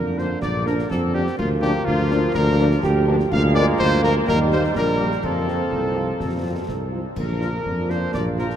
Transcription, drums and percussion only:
0.18 snare soft
0.42 concert bass drum medium
0.42 snare medium
0.67 snare medium
0.79 snare medium
0.91 concert bass drum medium
0.91 snare medium
1.27 snare medium
1.39 concert bass drum medium
1.39 crash soft
1.63 snare medium
1.87 concert bass drum medium
2.11 snare medium
2.34 concert bass drum medium
2.34 snare medium
2.59 snare medium
2.71 snare medium
2.83 concert bass drum medium
2.83 snare medium
3.19 snare medium
3.32 concert bass drum loud
3.32 crash soft
3.56 snare medium
3.79 concert bass drum medium
4.03 snare medium
4.28 concert bass drum medium
4.28 snare medium
4.52 snare medium
4.64 snare medium
4.75 concert bass drum medium
4.75 snare medium
5.11 snare medium
5.23 concert bass drum medium
5.23 crash soft
5.48 snare medium
5.72 concert bass drum medium
6.20 concert bass drum medium
6.20 snare medium
6.68 concert bass drum medium
6.68 snare medium
7.16 concert bass drum medium
7.16 crash medium
7.41 snare medium
7.65 concert bass drum medium
7.90 snare medium
8.14 concert bass drum medium
8.14 snare medium
8.38 snare medium
8.50 snare medium

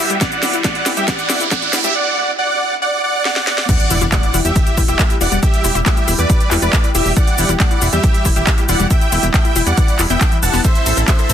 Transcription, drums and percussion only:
0.10 closed hi-hat medium
0.10 shaker soft
0.21 kick loud
0.21 snare medium
0.21 closed hi-hat medium
0.21 shaker soft
0.32 closed hi-hat medium
0.32 shaker soft
0.43 snare medium
0.43 open hi-hat loud
0.43 shaker medium
0.53 closed hi-hat soft
0.53 shaker soft
0.64 kick loud
0.64 snare medium
0.64 closed hi-hat medium
0.64 shaker soft
0.75 closed hi-hat soft
0.86 snare medium
0.86 open hi-hat loud
0.86 shaker medium
0.97 closed hi-hat medium
0.97 shaker soft
1.08 kick loud
1.08 snare medium
1.08 closed hi-hat medium
1.08 shaker soft
1.19 closed hi-hat medium
1.19 shaker soft
1.30 snare medium
1.30 open hi-hat loud
1.30 shaker medium
1.40 closed hi-hat medium
1.40 shaker soft
1.51 kick loud
1.51 snare medium
1.51 closed hi-hat medium
1.51 shaker soft
1.62 closed hi-hat soft
1.73 snare medium
1.73 open hi-hat loud
1.73 shaker medium
1.84 closed hi-hat medium
1.84 shaker soft
3.25 snare medium
3.36 snare medium
3.47 snare medium
3.58 snare medium
3.69 kick loud
3.69 closed hi-hat medium
3.69 crash loud
3.69 shaker soft
3.80 closed hi-hat medium
3.80 shaker soft
3.90 open hi-hat loud
3.90 shaker medium
4.01 closed hi-hat medium
4.01 shaker soft
4.12 kick loud
4.12 clap loud
4.12 closed hi-hat medium
4.12 shaker soft
4.23 closed hi-hat medium
4.23 shaker soft
4.34 open hi-hat loud
4.34 shaker medium
4.45 closed hi-hat medium
4.45 shaker soft
4.56 kick loud
4.56 closed hi-hat medium
4.56 shaker soft
4.67 closed hi-hat medium
4.67 shaker soft
4.77 kick medium
4.77 open hi-hat loud
4.77 shaker medium
4.88 closed hi-hat medium
4.88 shaker soft
4.99 kick loud
4.99 clap loud
4.99 closed hi-hat medium
4.99 shaker soft
5.10 closed hi-hat medium
5.10 shaker soft
5.21 open hi-hat loud
5.21 shaker medium
5.32 closed hi-hat medium
5.32 shaker soft
5.43 kick loud
5.43 closed hi-hat medium
5.43 shaker soft
5.54 closed hi-hat medium
5.54 shaker soft
5.64 open hi-hat loud
5.64 shaker medium
5.75 closed hi-hat medium
5.75 shaker soft
5.86 kick loud
5.86 clap loud
5.86 closed hi-hat medium
5.86 shaker soft
5.97 closed hi-hat medium
5.97 shaker soft
6.08 open hi-hat loud
6.08 shaker medium
6.19 closed hi-hat medium
6.19 shaker soft
6.30 kick loud
6.30 closed hi-hat medium
6.30 shaker soft
6.40 closed hi-hat medium
6.40 shaker soft
6.51 clap medium
6.51 open hi-hat loud
6.51 shaker medium
6.62 closed hi-hat medium
6.62 shaker soft
6.73 kick loud
6.73 clap loud
6.73 closed hi-hat medium
6.73 shaker soft
6.84 closed hi-hat medium
6.84 shaker soft
6.95 open hi-hat loud
6.95 shaker medium
7.06 open hi-hat medium
7.06 shaker soft
7.17 kick loud
7.17 closed hi-hat medium
7.17 shaker soft
7.27 closed hi-hat medium
7.27 shaker soft
7.38 open hi-hat loud
7.38 shaker medium
7.49 closed hi-hat medium
7.49 shaker soft
7.60 kick loud
7.60 clap loud
7.60 closed hi-hat medium
7.60 shaker soft
7.71 closed hi-hat soft
7.71 shaker soft
7.82 open hi-hat loud
7.82 shaker medium
7.93 closed hi-hat medium
7.93 shaker soft
8.04 kick loud
8.04 closed hi-hat medium
8.04 shaker soft
8.14 closed hi-hat soft
8.14 shaker soft
8.25 kick medium
8.25 open hi-hat loud
8.25 shaker medium
8.36 closed hi-hat medium
8.36 shaker soft
8.47 kick loud
8.47 clap loud
8.47 closed hi-hat medium
8.47 shaker soft
8.58 closed hi-hat medium
8.58 shaker soft
8.69 open hi-hat loud
8.69 shaker medium
8.80 closed hi-hat medium
8.80 shaker soft
8.90 kick loud
8.90 closed hi-hat medium
8.90 shaker soft
9.01 closed hi-hat medium
9.01 shaker soft
9.12 open hi-hat loud
9.12 shaker medium
9.23 closed hi-hat medium
9.23 shaker soft
9.34 kick loud
9.34 clap loud
9.34 closed hi-hat medium
9.34 shaker soft
9.45 closed hi-hat medium
9.45 shaker soft
9.56 open hi-hat loud
9.56 shaker medium
9.67 closed hi-hat medium
9.67 shaker soft
9.77 kick loud
9.77 closed hi-hat medium
9.77 shaker soft
9.88 closed hi-hat soft
9.88 shaker soft
9.99 clap medium
9.99 open hi-hat loud
9.99 shaker medium
10.10 closed hi-hat medium
10.10 shaker soft
10.21 kick loud
10.21 clap loud
10.21 closed hi-hat medium
10.21 shaker soft
10.32 closed hi-hat medium
10.32 shaker soft
10.43 open hi-hat loud
10.43 shaker medium
10.54 open hi-hat medium
10.54 shaker soft
10.64 kick loud
10.64 closed hi-hat medium
10.64 ride medium
10.64 shaker soft
10.75 closed hi-hat soft
10.75 shaker soft
10.86 open hi-hat loud
10.86 ride medium
10.86 shaker medium
10.97 closed hi-hat soft
10.97 shaker soft
11.08 kick loud
11.08 clap loud
11.08 closed hi-hat medium
11.08 ride medium
11.08 shaker soft
11.19 closed hi-hat medium
11.19 shaker soft
11.30 open hi-hat loud
11.30 ride medium
11.30 shaker medium

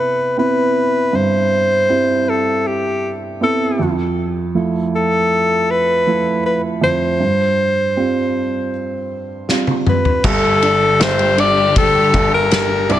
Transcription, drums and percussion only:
9.49 snare soft
9.67 high tom soft
9.87 mid tom medium
10.05 floor tom medium
10.24 kick loud
10.24 crash medium
10.62 ride medium
11.01 snare loud
11.01 ride medium
11.19 ride soft
11.38 ride medium
11.76 kick loud
11.76 ride medium
12.14 kick medium
12.14 ride medium
12.51 snare loud
12.51 ride medium
12.90 ride medium

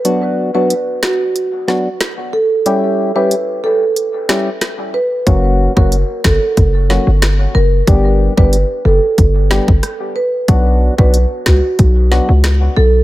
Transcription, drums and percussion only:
0.05 closed hi-hat medium
0.70 closed hi-hat medium
1.03 cross-stick medium
1.03 snare loud
1.36 closed hi-hat medium
1.68 snare medium
2.01 cross-stick loud
2.01 snare loud
2.01 closed hi-hat medium
2.66 closed hi-hat medium
3.31 closed hi-hat medium
3.96 closed hi-hat medium
4.29 cross-stick medium
4.29 snare loud
4.61 cross-stick medium
4.61 snare medium
4.61 closed hi-hat medium
5.27 kick loud
5.27 closed hi-hat medium
5.77 kick loud
5.92 closed hi-hat medium
6.24 kick loud
6.24 cross-stick medium
6.24 snare loud
6.57 kick medium
6.57 closed hi-hat medium
6.90 snare medium
7.22 cross-stick medium
7.22 snare loud
7.22 closed hi-hat medium
7.87 kick loud
7.87 closed hi-hat medium
8.38 kick medium
8.53 closed hi-hat medium
9.18 kick medium
9.18 closed hi-hat medium
9.51 cross-stick medium
9.51 snare loud
9.68 kick loud
9.83 cross-stick medium
9.83 closed hi-hat medium
10.48 kick loud
10.48 closed hi-hat medium
10.98 kick medium
11.14 closed hi-hat medium
11.46 kick loud
11.46 cross-stick medium
11.46 snare loud
11.79 kick medium
11.79 closed hi-hat medium
12.12 snare medium
12.44 cross-stick medium
12.44 snare loud
12.44 closed hi-hat medium

